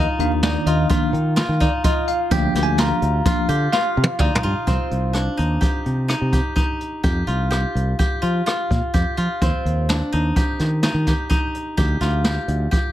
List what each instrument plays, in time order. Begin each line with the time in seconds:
Already playing: guzheng D#4 F4 G4
0.19 fingered electric bass D#2, tine electric piano D#3 A#3 D4 F5, closed hi-hat
0.43 guzheng D#4, tine electric piano D5, snare, closed hi-hat
0.66 fingered electric bass D#2, guzheng F4, tine electric piano D#5, closed hi-hat
0.90 tine electric piano D#3 A#3 D4, guzheng F4, kick, closed hi-hat
1.13 fingered electric bass D#3, closed hi-hat
1.36 guzheng F4, snare, closed hi-hat
1.49 fingered electric bass D#3
1.60 guzheng D#4, tine electric piano D5, kick, closed hi-hat
1.84 guzheng F4, tine electric piano D#5, kick, closed hi-hat
2.07 tine electric piano F5, closed hi-hat
2.31 fingered electric bass D2, tine electric piano F3 A#3 D4 G5, guzheng G4, kick, closed hi-hat
2.55 fingered electric bass D2, guzheng G4, snare, closed hi-hat
2.63 tine electric piano G#5
2.78 guzheng F4, tine electric piano A#5, snare, closed hi-hat
3.02 fingered electric bass D2, closed hi-hat
3.25 tine electric piano F3 A#3 D4, guzheng F4, kick, closed hi-hat
3.49 fingered electric bass D3, guzheng G4, closed hi-hat
3.72 guzheng F4, tine electric piano F5, snare
3.97 fingered electric bass C3
4.04 high tom
4.19 fingered electric bass D2, guzheng D#4, tine electric piano D5, kick, mid tom
4.35 mid tom
4.43 fingered electric bass G2, guzheng F4
4.67 fingered electric bass C2, guzheng C4, kick, closed hi-hat
4.91 fingered electric bass C2, closed hi-hat
5.13 guzheng D4, cross-stick, closed hi-hat
5.37 fingered electric bass D#2, guzheng D#4, closed hi-hat
5.61 guzheng G4, kick, closed hi-hat
5.86 fingered electric bass C3, closed hi-hat
6.08 guzheng D#4, cross-stick, closed hi-hat
6.21 fingered electric bass C3
6.32 guzheng G4, kick, closed hi-hat
6.56 guzheng D#4, kick, closed hi-hat
6.81 closed hi-hat
7.04 fingered electric bass F2, guzheng G4, kick, closed hi-hat
7.27 fingered electric bass C2, guzheng F4, closed hi-hat
7.51 guzheng G4, cross-stick, closed hi-hat
7.75 fingered electric bass C2, closed hi-hat
7.99 guzheng G4, kick, closed hi-hat
8.22 fingered electric bass F3, guzheng F4, closed hi-hat
8.46 guzheng F4, cross-stick, closed hi-hat
8.71 fingered electric bass A#2, kick, closed hi-hat
8.94 fingered electric bass F2, guzheng G4, kick, closed hi-hat
9.17 fingered electric bass F3, guzheng F4, closed hi-hat
9.42 fingered electric bass D#2, guzheng C4, kick, closed hi-hat
9.65 fingered electric bass D#2, closed hi-hat
9.89 guzheng D4, snare, closed hi-hat
10.12 fingered electric bass D#2, guzheng D#4, closed hi-hat
10.36 guzheng G4, kick, closed hi-hat
10.59 fingered electric bass D#3, snare, closed hi-hat
10.83 guzheng D#4, snare, closed hi-hat
10.94 fingered electric bass D#3
11.07 guzheng G4, kick, snare, closed hi-hat
11.30 guzheng D#4, kick, closed hi-hat
11.54 closed hi-hat
11.77 fingered electric bass D2, guzheng G4, kick, closed hi-hat
12.01 fingered electric bass D2, guzheng F4, snare, closed hi-hat
12.24 guzheng G4, snare, closed hi-hat
12.48 fingered electric bass D2, closed hi-hat
12.71 guzheng G4, kick, closed hi-hat